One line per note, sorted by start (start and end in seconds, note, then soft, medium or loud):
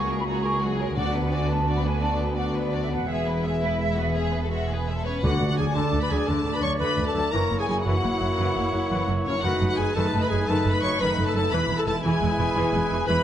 0.00 0.93 C#2 medium
0.00 0.11 F#3 soft
0.00 0.93 A#3 medium
0.00 0.10 F#4 soft
0.00 0.94 F#4 medium
0.00 0.18 C#6 medium
0.09 0.28 G#3 soft
0.09 0.27 G#4 soft
0.09 0.27 A#4 soft
0.19 0.23 B5 medium
0.26 0.44 F#3 soft
0.26 0.44 F#4 soft
0.26 0.43 G#4 soft
0.26 0.45 A#5 medium
0.42 0.63 G#3 soft
0.42 0.61 G#4 soft
0.42 0.62 A#4 soft
0.42 0.62 C#6 medium
0.60 0.79 F#4 soft
0.60 0.80 G#4 soft
0.64 0.81 F#3 soft
0.78 0.98 G#3 soft
0.78 0.97 G#4 soft
0.78 0.97 A#4 soft
0.78 0.85 C#5 medium
0.96 3.04 D2 soft
0.96 1.46 D3 medium
0.96 5.01 B3 soft
0.96 1.14 D4 soft
0.96 1.13 F#4 soft
0.96 3.04 F#4 soft
0.96 1.13 D5 soft
0.96 1.22 F#5 medium
1.13 1.33 B3 soft
1.13 1.31 D4 soft
1.13 1.32 B4 soft
1.24 1.32 F#5 medium
1.31 1.50 D4 soft
1.31 1.49 F#4 soft
1.31 1.50 D5 soft
1.31 1.49 G#5 medium
1.49 1.68 B3 soft
1.49 1.67 D4 soft
1.49 1.67 B4 soft
1.49 1.76 A5 medium
1.65 1.84 D4 soft
1.65 1.83 F#4 soft
1.65 1.84 D5 soft
1.77 1.85 B5 medium
1.84 2.03 B3 soft
1.84 2.02 D4 soft
1.84 2.02 B4 soft
1.84 2.02 G#5 medium
2.01 2.20 D4 soft
2.01 2.20 F#4 soft
2.01 2.19 D5 soft
2.01 2.29 A5 medium
2.20 2.38 B3 soft
2.20 2.38 D4 soft
2.20 2.37 B4 soft
2.30 2.38 G#5 medium
2.37 2.54 D4 soft
2.37 2.54 F#4 soft
2.37 2.53 D5 soft
2.37 2.44 F#5 medium
2.55 2.73 B3 soft
2.55 2.73 D4 soft
2.55 2.73 B4 soft
2.55 2.82 D5 medium
2.72 2.91 D4 soft
2.72 2.91 F#4 soft
2.72 2.90 D5 soft
2.82 2.86 E5 soft
2.90 3.08 B3 soft
2.90 3.09 D4 soft
2.90 3.08 B4 soft
2.90 3.09 F#5 medium
3.08 5.02 E1 soft
3.08 5.01 E2 soft
3.08 3.25 G#3 soft
3.08 5.05 G#4 soft
3.08 3.25 G#4 soft
3.08 3.25 E5 soft
3.08 5.05 E5 medium
3.26 3.44 B3 soft
3.26 3.45 E4 soft
3.26 3.44 B4 soft
3.43 3.62 G#3 soft
3.43 3.62 G#4 soft
3.43 3.62 E5 soft
3.61 3.80 B3 soft
3.61 3.86 E4 soft
3.61 3.80 B4 soft
3.80 3.97 G#3 soft
3.80 3.97 E5 soft
3.90 3.98 E4 soft
3.98 4.16 B3 soft
3.98 4.16 F#4 soft
3.98 4.16 B4 soft
4.16 4.34 G#3 soft
4.16 4.43 G#4 soft
4.16 4.34 E5 soft
4.32 4.51 B3 soft
4.32 4.51 B4 soft
4.43 4.52 A4 soft
4.51 4.68 G#3 soft
4.51 4.69 F#4 soft
4.51 4.68 E5 soft
4.70 4.87 B3 soft
4.70 4.97 G#4 soft
4.70 4.88 B4 soft
4.87 5.05 G#3 soft
4.87 5.06 E5 soft
4.96 5.05 A4 soft
5.04 5.23 B3 soft
5.04 5.25 C#4 soft
5.04 5.23 B4 soft
5.04 5.22 C#5 soft
5.04 5.12 C#5 soft
5.22 5.30 D2 medium
5.22 5.31 D2 medium
5.22 5.39 D3 soft
5.22 5.72 D3 medium
5.22 5.73 A3 soft
5.22 5.72 D4 soft
5.22 7.29 D4 soft
5.22 5.50 F#4 medium
5.22 5.73 D5 soft
5.22 5.47 F#5 soft
5.22 5.48 F#5 medium
5.40 5.47 D2 soft
5.40 5.49 D2 soft
5.40 5.47 A3 soft
5.48 5.59 F#4 medium
5.48 5.57 F#5 soft
5.48 5.58 F#5 soft
5.57 5.65 D2 soft
5.57 5.66 D2 soft
5.57 5.65 F#3 soft
5.57 5.67 G#4 soft
5.57 5.64 G#5 medium
5.57 5.75 G#5 soft
5.74 5.83 D2 soft
5.74 5.84 D2 medium
5.74 5.91 D3 soft
5.74 6.27 A3 soft
5.74 6.27 D4 soft
5.74 6.02 A4 medium
5.74 6.27 D5 soft
5.74 6.01 A5 soft
5.74 6.02 A5 soft
5.92 6.00 D2 soft
5.92 6.01 D2 soft
5.92 6.00 A3 soft
6.01 6.11 B4 medium
6.01 6.10 B5 soft
6.01 6.11 B5 soft
6.10 6.17 D2 soft
6.10 6.18 D2 soft
6.10 6.18 F#3 soft
6.10 6.29 G#4 medium
6.10 6.28 G#5 soft
6.10 6.29 G#5 soft
6.26 6.35 D2 medium
6.26 6.36 D2 medium
6.26 6.44 D3 medium
6.26 7.31 A3 soft
6.26 7.31 D4 soft
6.26 6.54 A4 soft
6.26 7.31 D5 soft
6.26 6.53 A5 soft
6.26 6.55 A5 soft
6.45 6.52 D2 soft
6.45 6.53 D2 soft
6.45 6.53 A3 soft
6.54 6.62 B4 medium
6.54 6.63 B5 soft
6.62 6.69 D2 soft
6.62 6.71 D2 soft
6.62 6.70 F#3 soft
6.62 6.79 C#5 medium
6.62 6.70 C#6 soft
6.62 6.71 C#6 soft
6.80 6.87 D2 medium
6.80 6.88 D2 medium
6.80 6.97 D3 soft
6.80 7.06 B4 medium
6.80 7.06 B5 medium
6.80 7.06 B5 soft
6.98 7.05 D2 soft
6.98 7.06 D2 soft
6.98 7.05 A3 soft
7.06 7.13 A4 medium
7.06 7.12 A5 soft
7.06 7.15 A5 soft
7.14 7.23 D2 soft
7.14 7.24 D2 soft
7.14 7.22 F#3 soft
7.14 7.33 A4 medium
7.14 7.32 A5 medium
7.14 7.33 A5 soft
7.31 7.41 F#1 medium
7.31 7.39 F#2 soft
7.31 7.49 E3 soft
7.31 7.84 A#3 soft
7.31 7.85 E4 soft
7.31 9.43 E4 soft
7.31 7.58 A#4 medium
7.31 7.84 C#5 soft
7.31 7.39 A#5 medium
7.31 7.59 A#5 medium
7.50 7.58 F#1 soft
7.50 7.58 F#2 soft
7.50 7.57 A#3 soft
7.59 7.63 G#4 medium
7.59 7.66 G#5 soft
7.59 7.68 G#5 soft
7.67 7.75 F#1 soft
7.67 7.76 F#2 soft
7.67 7.75 F#3 soft
7.67 7.87 G#4 medium
7.67 7.74 G#5 medium
7.67 7.76 G#5 medium
7.85 7.92 F#1 medium
7.85 7.93 F#2 medium
7.85 8.02 E3 soft
7.85 9.41 A#3 soft
7.85 9.41 E4 soft
7.85 9.08 F#4 medium
7.85 9.46 C#5 soft
7.85 9.05 F#5 soft
7.85 9.06 F#5 soft
8.03 8.11 F#1 soft
8.03 8.10 F#2 soft
8.03 8.11 A#3 soft
8.21 8.28 F#1 soft
8.21 8.28 F#2 soft
8.21 8.28 F#3 soft
8.38 8.46 F#1 medium
8.38 8.45 F#2 medium
8.38 8.55 E3 medium
8.55 8.63 F#1 soft
8.55 8.62 F#2 soft
8.55 8.64 A#3 soft
8.73 8.80 F#1 soft
8.73 8.80 F#2 soft
8.73 8.80 F#3 soft
8.90 8.98 F#1 medium
8.90 8.97 F#2 medium
8.90 9.08 E3 soft
9.08 9.16 F#1 soft
9.08 9.15 F#2 soft
9.08 9.15 A#3 soft
9.25 9.33 F#1 soft
9.25 9.33 F#2 soft
9.25 9.33 F#3 soft
9.25 9.35 C#4 medium
9.25 9.42 C#5 medium
9.25 9.43 C#5 medium
9.42 9.51 F#1 medium
9.42 9.50 F#2 medium
9.42 9.60 D#3 medium
9.42 9.94 A3 soft
9.42 9.94 D#4 soft
9.42 11.48 D#4 soft
9.42 9.69 F#4 medium
9.42 9.96 B4 soft
9.42 9.67 F#5 medium
9.42 9.68 F#5 medium
9.61 9.69 F#1 soft
9.61 9.68 F#2 soft
9.61 9.68 A3 soft
9.69 9.80 F#4 medium
9.69 9.78 F#5 medium
9.69 9.78 F#5 soft
9.77 9.86 F#1 soft
9.77 9.85 F#2 soft
9.77 9.86 F#3 soft
9.77 9.95 G#4 medium
9.77 9.95 G#5 medium
9.77 9.96 G#5 medium
9.94 10.04 F#1 medium
9.94 10.03 F#2 medium
9.94 10.12 D#3 soft
9.94 10.45 A3 medium
9.94 10.46 D#4 medium
9.94 10.07 A4 medium
9.94 10.47 B4 soft
9.94 10.21 A5 medium
10.13 10.21 F#1 soft
10.13 10.20 F#2 soft
10.13 10.21 A3 soft
10.21 10.29 B4 medium
10.21 10.30 B5 medium
10.21 10.31 B5 medium
10.29 10.38 F#1 soft
10.29 10.37 F#2 soft
10.29 10.39 F#3 soft
10.29 10.50 G#4 medium
10.29 10.36 G#5 medium
10.29 10.47 G#5 medium
10.46 10.54 F#1 medium
10.46 10.55 F#2 medium
10.46 10.65 D#3 medium
10.46 10.98 A3 soft
10.46 10.99 D#4 medium
10.46 10.75 A4 medium
10.46 11.00 B4 medium
10.46 10.73 A5 soft
10.46 10.75 A5 medium
10.65 10.72 F#1 soft
10.65 10.72 F#2 soft
10.65 10.74 A3 soft
10.72 10.83 B4 medium
10.72 10.82 B5 medium
10.82 10.90 F#1 soft
10.82 10.89 F#2 soft
10.82 10.91 F#3 soft
10.82 11.00 C#5 medium
10.82 10.89 C#6 medium
10.82 11.00 C#6 medium
11.00 11.07 F#1 medium
11.00 11.07 F#2 medium
11.00 11.17 D#3 medium
11.00 11.51 A3 medium
11.00 11.52 D#4 medium
11.00 11.12 B4 medium
11.00 11.37 B4 medium
11.00 11.26 B5 medium
11.17 11.24 F#1 soft
11.17 11.24 F#2 soft
11.17 11.26 A3 soft
11.26 11.35 A4 medium
11.26 11.34 A5 medium
11.26 11.35 A5 medium
11.34 11.42 F#1 soft
11.34 11.41 F#2 soft
11.34 11.43 F#3 medium
11.34 11.52 A4 medium
11.34 11.52 A5 medium
11.34 11.53 A5 medium
11.51 11.59 E1 medium
11.51 11.58 E2 medium
11.51 11.69 E3 medium
11.51 13.23 E4 medium
11.51 12.05 E4 medium
11.51 11.85 B4 soft
11.51 11.65 B4 medium
11.51 11.59 B5 medium
11.51 11.79 B5 medium
11.55 12.05 G#3 medium
11.69 11.76 E1 soft
11.69 11.76 E2 soft
11.69 11.77 G#3 soft
11.78 11.83 A4 medium
11.78 11.81 A5 medium
11.78 11.86 A5 medium
11.87 11.94 E1 soft
11.87 11.94 E2 soft
11.87 11.95 E3 soft
11.87 11.95 A4 medium
11.87 11.94 A5 medium
11.87 12.04 A5 medium
12.04 12.11 E1 medium
12.04 12.11 E2 medium
12.04 12.20 E3 medium
12.04 12.93 G#3 medium
12.04 12.93 E4 medium
12.04 13.06 G#4 medium
12.04 13.04 B4 medium
12.04 13.07 G#5 medium
12.21 12.29 E1 soft
12.21 12.28 E2 soft
12.21 12.28 G#3 soft
12.38 12.46 E1 medium
12.38 12.46 E2 soft
12.38 12.45 E3 medium
12.55 12.63 E1 medium
12.55 12.63 E2 medium
12.55 12.72 E3 medium
12.74 12.81 E1 medium
12.74 12.81 E2 soft
12.74 12.81 G#3 soft
12.91 12.98 E1 soft
12.91 12.98 E2 medium
12.91 12.99 E3 medium
13.07 13.15 E1 medium
13.07 13.16 E2 medium
13.07 13.23 E3 medium
13.07 13.23 G#3 medium
13.07 13.23 E4 medium
13.07 13.23 B4 medium
13.07 13.16 B5 medium
13.07 13.23 B5 medium